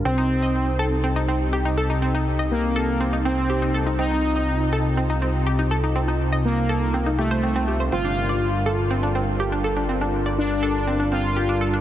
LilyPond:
<<
  \new Staff \with { instrumentName = "Synth arpeggio sound" } { \time 4/4 \key c \dorian \tempo 4 = 122 c'16 ees'16 r16 ees''16 r8 a'16 r16 c'16 ees'16 c'16 r16 g'16 ees'16 a'16 ees'16 | c'16 ees'16 r16 ees''16 r8 a'16 r16 c'16 ees'16 c'16 r16 g'16 ees'16 a'16 ees'16 | c'16 ees'16 r16 ees''16 r8 a'16 r16 c'16 ees'16 c'16 r16 g'16 ees'16 a'16 ees'16 | c'16 ees'16 r16 ees''16 r8 a'16 r16 c'16 ees'16 g'16 c''16 c'16 c'16 g'16 c''16 |
c'16 d'16 r16 d''16 r8 a'16 r16 c'16 d'16 c'16 r16 g'16 d'16 a'16 d'16 | c'16 d'16 r16 d''16 r8 a'16 r16 c'16 d'16 c'16 r16 g'16 d'16 a'16 d'16 | }
  \new Staff \with { instrumentName = "Analog synth pad" } { \time 4/4 \key c \dorian << { g'1~ | g'1 | f'1~ | f'1 |
bes'1~ | bes'1 | } \\ { <c c' ees'>1~ | <c c' ees'>1~ | <c c' ees'>1~ | <c c' ees'>1 |
<g d'>1~ | <g d'>1 | } >> }
  \new Staff \with { instrumentName = "Analog polysynth" } { \time 4/4 \key c \dorian c'2 r2 | r4 bes4. c'4. | ees'2 r2 | r4 bes4. a4. |
f'2 r2 | r4 d'4. f'4. | }
  \new Staff \with { instrumentName = "Analog synth bass" } { \clef bass \time 4/4 \key c \dorian c,1~ | c,1~ | c,1~ | c,1 |
g,,1~ | g,,1 | }
>>